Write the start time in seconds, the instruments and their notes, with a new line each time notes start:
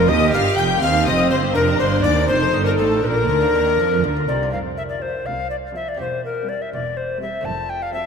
Already playing: recorder A#4
0.07 lute D#2, double bass section D#2, cello section D#2, viola section G4, violin section D#5 D#6, recorder D#5
0.20 lute G4
0.32 double bass section G1, lute G2 A#4, cello section G2, violin section F5 F6, recorder F5
0.44 lute G4
0.55 double bass section F1, lute F2 A#3, cello section F2, violin section G5 G6, recorder G5
0.70 lute G4
0.80 lute D#2, double bass section D#2, cello section D#2, viola section C4, violin section F5 F6, recorder F5
0.94 lute G4
1.06 double bass section F1, lute F2 C5, cello section F2, violin section D#5 D#6, recorder D#5
1.19 lute G4
1.30 double bass section G1, lute G2 C4, cello section G2, recorder C5, violin section C5 C6
1.43 lute G4
1.54 double bass section F1, lute F2, cello section F2, viola section D4, violin section A#4 A#5, recorder A#4
1.68 lute A#4
1.79 double bass section G1, lute G2 D5, cello section G2, recorder C5, violin section C5 C6
1.92 lute A#4
2.03 lute D#2 F4, double bass section D#2, cello section D#2, violin section D5 D6, recorder D5
2.16 lute A#4
2.28 double bass section F1, lute F2, cello section F2, viola section D#4, violin section C5 C6, recorder C5
2.41 lute A4
2.53 double bass section G1, lute G2 D#5, cello section G2
2.65 lute A4, violin section A#4 A#5, recorder A#4
2.77 double bass section A1, lute A2 F4, cello section A2, violin section A4 A5, recorder A4
2.92 lute A4
3.02 double bass section A#1, cello section A#2, viola section D4, violin section A#4 A#5, recorder B4
3.07 recorder A#4
3.16 lute F4
3.29 double bass section D2, cello section D3, lute D3 A#4
3.42 lute F4
3.54 double bass section D#2, cello section D#3, lute D#3 D4
3.67 lute F4
3.79 double bass section F2, cello section F3, lute F3 A#3
3.92 lute A3
4.03 double bass section D2, cello section D3, lute D3 A#3
4.17 lute F4
4.28 double bass section C2, cello section C3, lute C3 D#4, recorder D5
4.43 lute F4
4.51 double bass section F1, cello section F2, lute A3 C4 F4, recorder F5
4.55 lute F2
4.77 recorder E5
4.89 recorder D5
5.00 viola section F3, violin section C4 A4, recorder C5
5.26 double bass section C2, cello section C2, recorder F5
5.50 recorder D5
5.74 viola section F3, violin section C4 A4, recorder E5
5.89 recorder D5
5.94 lute A#3 C4 G4
5.99 double bass section E1, lute E2, cello section E2, recorder C5
6.25 recorder A#4
6.46 viola section G3, violin section C4 A#4, recorder D5
6.62 recorder E5
6.72 double bass section E1, cello section E2, lute E2, recorder D5
6.97 recorder C5
7.20 viola section G3, violin section C4 A#4, recorder E5
7.41 lute A3 C4 F4
7.45 double bass section F1, lute F2, cello section F2, recorder A5
7.69 recorder G5
7.83 recorder F5
7.93 viola section F3, violin section C4 A4, recorder E5